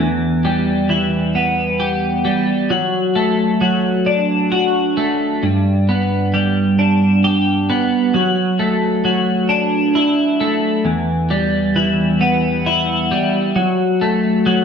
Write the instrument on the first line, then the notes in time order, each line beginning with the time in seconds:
clean electric guitar
0.00 E2
0.45 G3
0.89 E3
1.35 B3
1.80 G4
2.25 G3
2.70 F#3
3.16 A3
3.61 F#3
4.06 D4
4.52 F#4
4.97 A3
5.43 G2
5.89 B3
6.34 G3
6.79 D4
7.24 G4
7.70 B3
8.14 F#3
8.59 A3
9.05 F#3
9.49 D4
9.95 E4
10.40 A3
10.85 E2
11.30 G3
11.76 E3
12.21 B3
12.66 E4
13.11 G3
13.56 F#3
14.01 A3
14.46 F#3